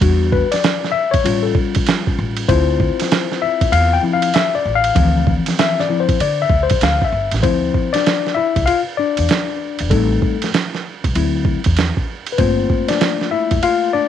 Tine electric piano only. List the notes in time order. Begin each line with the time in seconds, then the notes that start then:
0.01 G3 D4 F#4
0.32 B4
0.52 D5
0.92 E5
1.11 C#5
1.24 G3 C#4 F4
1.43 A4
2.48 C4 E4 F4 C5
3.42 E5
3.72 F5
3.93 G5
4.03 F3 C4 E4
4.13 F5
4.34 E5
4.55 D5
4.75 F5
4.95 E3 F3 C4
5.59 E5
5.80 D5
5.89 F3 C4 E4
6.00 C5
6.21 D5
6.42 E5
6.63 C5
6.83 F5
7.05 E5
7.43 F3 C4 E4 C5
7.93 D4 D5
8.35 E4 E5
8.66 F4 F5
8.97 D4 D5
9.90 G3 A3 C4 D#4 A4
11.15 F#3 C4 E4
12.32 B4
12.38 A3 A#3 C4 F4 C5
12.88 D4 D5
13.31 E4 E5
13.63 F4 F5
13.93 D4 D5